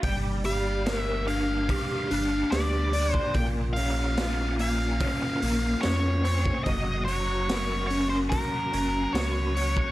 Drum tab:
HH |o-o-o-o-o-o-o-o-|o-o-o-o-o-o-o-o-|o-o-o-o-o-o-o-o-|
SD |----o-------o---|----o-------o---|----o-------o---|
BD |o-------o------o|o-------o------o|o-------o------o|